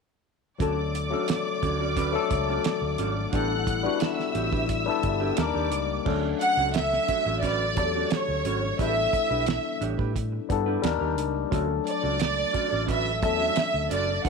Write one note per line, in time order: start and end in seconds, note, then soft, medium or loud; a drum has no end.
0.58 1.13 D2 medium
0.58 1.01 F#3 medium
0.58 1.01 A3 medium
0.58 0.81 C#4 medium
0.58 1.02 D4 medium
0.58 0.77 F#4 medium
0.58 0.76 A4 medium
0.58 1.03 A4 medium
0.58 3.29 D5 medium
0.58 3.30 D6 medium
0.58 kick loud
0.58 closed hi-hat medium
0.77 muted clean electric guitar stroke soft
0.94 muted clean electric guitar stroke soft
0.94 closed hi-hat medium
1.10 1.94 F#3 medium
1.10 1.95 A3 medium
1.10 1.27 C#4 soft
1.10 1.96 D4 medium
1.10 1.28 F#4 soft
1.10 1.28 A4 soft
1.10 1.96 A4 medium
1.28 muted clean electric guitar stroke soft
1.28 snare loud
1.28 closed hi-hat medium
1.46 muted clean electric guitar stroke soft
1.62 2.15 D2 medium
1.62 1.79 C#4 medium
1.62 1.79 F#4 medium
1.62 1.79 A4 medium
1.62 kick medium
1.62 closed hi-hat soft
1.80 1.95 C#4 soft
1.80 1.96 F#4 soft
1.80 1.96 A4 soft
1.96 2.18 C#4 medium
1.96 2.18 F#4 medium
1.96 2.18 B4 medium
1.96 kick medium
1.96 closed hi-hat medium
2.12 3.11 F#3 medium
2.12 3.11 A3 medium
2.12 3.12 D4 medium
2.12 3.12 A4 medium
2.31 2.57 C#2 medium
2.31 muted clean electric guitar stroke soft
2.31 kick medium
2.31 closed hi-hat medium
2.48 2.65 C#4 soft
2.48 2.65 F#4 soft
2.48 2.65 A4 medium
2.64 muted clean electric guitar stroke soft
2.64 snare loud
2.64 closed hi-hat medium
2.82 2.95 D2 medium
2.82 muted clean electric guitar stroke soft
2.98 3.25 G#1 medium
2.98 3.20 C#4 medium
2.98 3.16 F#4 medium
2.98 3.15 A4 medium
2.98 closed hi-hat medium
3.16 muted clean electric guitar stroke soft
3.32 3.86 A1 medium
3.32 3.75 G3 medium
3.32 3.75 B3 medium
3.32 3.54 D4 medium
3.32 3.75 D4 medium
3.32 3.76 E4 medium
3.32 3.50 G4 medium
3.32 3.76 A4 medium
3.32 3.48 B4 medium
3.32 4.01 F#5 medium
3.32 4.01 F#6 medium
3.32 kick medium
3.32 closed hi-hat medium
3.50 muted clean electric guitar stroke soft
3.67 muted clean electric guitar stroke soft
3.67 kick medium
3.67 closed hi-hat medium
3.83 4.67 G3 medium
3.83 4.68 B3 medium
3.83 4.68 D4 medium
3.83 3.99 D4 soft
3.83 4.69 E4 medium
3.83 4.69 F#4 medium
3.83 4.00 G4 soft
3.83 4.00 B4 medium
4.00 5.36 E5 medium
4.00 5.36 E6 medium
4.00 muted clean electric guitar stroke soft
4.00 snare loud
4.00 closed hi-hat medium
4.17 muted clean electric guitar stroke soft
4.17 snare soft
4.34 4.88 A1 medium
4.34 4.51 D4 soft
4.34 4.51 G4 soft
4.34 4.51 C#5 soft
4.34 closed hi-hat soft
4.52 4.67 D4 soft
4.52 4.67 G4 soft
4.52 4.68 B4 soft
4.52 kick medium
4.68 muted clean electric guitar stroke soft
4.68 kick medium
4.68 closed hi-hat medium
4.85 5.35 G3 medium
4.85 5.38 B3 medium
4.85 5.37 D4 medium
4.85 5.39 E4 medium
4.85 muted clean electric guitar stroke soft
4.89 5.39 A4 medium
5.03 5.30 G1 medium
5.03 kick medium
5.03 closed hi-hat medium
5.20 5.36 D4 medium
5.20 5.36 G4 medium
5.20 5.37 B4 medium
5.36 5.51 D#2 medium
5.36 5.93 G3 medium
5.36 5.93 A#3 medium
5.36 5.94 D4 medium
5.36 5.94 D#4 medium
5.36 5.95 A#4 medium
5.36 6.05 D5 medium
5.36 6.05 D6 medium
5.36 muted clean electric guitar stroke soft
5.36 snare medium
5.36 closed hi-hat medium
5.54 5.72 D#2 medium
5.54 5.70 D4 medium
5.54 5.71 G4 medium
5.54 5.71 A#4 medium
5.71 5.99 C#2 medium
5.71 muted clean electric guitar stroke soft
5.71 closed hi-hat medium
5.88 muted clean electric guitar stroke soft
6.05 6.33 D2 medium
6.05 7.17 F#3 medium
6.05 7.18 A3 medium
6.05 6.27 C#4 medium
6.05 7.18 C#4 medium
6.05 7.19 D4 medium
6.05 6.23 F#4 medium
6.05 6.22 A4 medium
6.05 7.19 A4 medium
6.05 kick medium
6.05 crash medium
6.23 muted clean electric guitar stroke soft
6.40 6.72 F#5 medium
6.40 muted clean electric guitar stroke soft
6.40 closed hi-hat medium
6.57 6.97 C#2 medium
6.57 6.73 C#4 soft
6.57 6.74 F#4 soft
6.57 6.74 A4 soft
6.74 7.39 E5 medium
6.74 muted clean electric guitar stroke soft
6.74 snare medium
6.74 closed hi-hat medium
6.91 muted clean electric guitar stroke soft
6.91 snare soft
7.08 7.25 C#4 soft
7.08 7.25 F#4 soft
7.08 7.24 A4 medium
7.08 muted fingered electric bass stroke soft
7.08 kick medium
7.08 closed hi-hat soft
7.25 7.77 A1 medium
7.25 7.42 C#4 soft
7.25 7.42 F#4 soft
7.25 7.42 A4 medium
7.43 7.64 C#4 medium
7.43 7.65 F#4 medium
7.43 7.65 B4 medium
7.43 8.11 D5 medium
7.43 kick medium
7.43 closed hi-hat medium
7.75 8.03 E2 medium
7.75 8.60 F#3 medium
7.75 8.60 A3 medium
7.75 8.61 D4 medium
7.75 7.85 G4 soft
7.75 muted clean electric guitar stroke soft
7.75 kick medium
7.75 closed hi-hat medium
7.86 8.65 A4 medium
7.94 8.10 C#4 soft
7.94 8.11 F#4 soft
7.94 8.11 A4 soft
8.10 8.80 C#5 medium
8.10 muted clean electric guitar stroke soft
8.10 snare loud
8.10 closed hi-hat medium
8.28 8.41 D2 medium
8.28 muted clean electric guitar stroke soft
8.45 8.71 G#1 medium
8.45 8.67 C#4 medium
8.45 8.63 F#4 medium
8.45 8.62 A4 medium
8.45 closed hi-hat medium
8.63 muted clean electric guitar stroke soft
8.78 9.05 A1 medium
8.78 9.91 G3 medium
8.78 9.91 B3 medium
8.78 9.01 D4 medium
8.78 9.91 D4 medium
8.78 9.92 E4 medium
8.78 8.97 G4 medium
8.78 8.87 G#4 medium
8.78 8.96 B4 medium
8.78 9.78 E5 medium
8.78 kick medium
8.78 closed hi-hat medium
8.88 9.95 A4 medium
8.97 muted clean electric guitar stroke soft
9.13 muted clean electric guitar stroke soft
9.13 kick medium
9.13 closed hi-hat medium
9.30 9.57 B1 medium
9.30 9.46 D4 soft
9.30 9.47 G4 soft
9.30 9.47 B4 medium
9.46 muted clean electric guitar stroke soft
9.46 snare medium
9.46 closed hi-hat medium
9.64 muted clean electric guitar stroke soft
9.81 9.95 A1 medium
9.81 9.98 D4 soft
9.81 9.98 G4 soft
9.81 9.98 C#5 medium
9.81 closed hi-hat soft
9.98 10.38 A2 medium
9.98 10.14 D4 soft
9.98 10.15 G4 soft
9.98 10.15 B4 soft
9.98 kick medium
10.15 muted clean electric guitar stroke soft
10.15 kick medium
10.15 closed hi-hat medium
10.32 muted clean electric guitar stroke soft
10.49 10.76 G2 medium
10.49 10.81 G3 medium
10.49 10.84 B3 medium
10.49 10.83 D4 medium
10.49 10.85 E4 medium
10.49 10.85 A4 medium
10.49 kick medium
10.49 closed hi-hat medium
10.66 10.82 D4 medium
10.66 10.83 G4 medium
10.66 10.84 B4 medium
10.82 10.97 D#2 medium
10.82 11.39 G3 medium
10.82 11.40 A#3 medium
10.82 11.40 D4 medium
10.82 11.41 D#4 medium
10.82 11.41 A#4 medium
10.82 snare loud
10.82 closed hi-hat medium
11.00 11.17 D#2 medium
11.00 11.16 D4 soft
11.00 11.17 G4 medium
11.00 11.17 A#4 medium
11.17 11.44 C#2 medium
11.17 muted clean electric guitar stroke soft
11.17 closed hi-hat medium
11.35 muted clean electric guitar stroke soft
11.50 11.79 D2 medium
11.50 12.63 F#3 medium
11.50 12.64 A3 medium
11.50 11.73 C#4 medium
11.50 12.64 D4 medium
11.50 11.69 F#4 medium
11.50 11.67 A4 medium
11.50 12.65 A4 medium
11.50 kick medium
11.50 closed hi-hat medium
11.68 muted clean electric guitar stroke soft
11.86 12.85 D5 medium
11.86 muted clean electric guitar stroke soft
11.86 closed hi-hat medium
12.02 12.43 C#2 medium
12.02 12.18 C#4 soft
12.02 12.19 F#4 soft
12.02 12.19 A4 medium
12.19 muted clean electric guitar stroke soft
12.19 snare medium
12.19 closed hi-hat medium
12.36 muted clean electric guitar stroke soft
12.53 12.71 C#4 medium
12.53 12.70 F#4 medium
12.53 12.69 A4 medium
12.53 muted fingered electric bass stroke soft
12.53 kick medium
12.53 closed hi-hat soft
12.70 13.23 A1 medium
12.70 12.85 C#4 soft
12.70 12.86 F#4 soft
12.70 12.88 A4 soft
12.87 13.09 C#4 medium
12.87 13.09 F#4 medium
12.87 13.10 B4 medium
12.87 13.21 E5 medium
12.87 kick medium
12.87 closed hi-hat medium
13.22 13.49 E2 medium
13.22 14.06 F#3 medium
13.22 14.07 A3 medium
13.22 14.07 C#4 medium
13.22 14.08 D4 medium
13.22 14.08 A4 medium
13.22 13.88 E5 medium
13.22 muted clean electric guitar stroke soft
13.22 kick medium
13.22 closed hi-hat medium
13.38 13.55 C#4 soft
13.38 13.56 F#4 soft
13.38 13.56 A4 soft
13.56 muted clean electric guitar stroke soft
13.56 snare loud
13.56 closed hi-hat medium
13.73 13.87 D2 medium
13.73 muted clean electric guitar stroke soft
13.91 14.17 F#1 medium
13.91 14.12 C#4 medium
13.91 14.08 F#4 medium
13.91 14.07 A4 medium
13.91 14.24 D5 medium
13.91 closed hi-hat medium
14.08 muted clean electric guitar stroke soft
14.24 14.29 G1 medium
14.24 14.29 G3 medium
14.24 14.29 B3 soft
14.24 14.29 D4 medium
14.24 14.29 F#4 medium
14.24 14.29 B4 medium
14.24 kick medium
14.24 closed hi-hat medium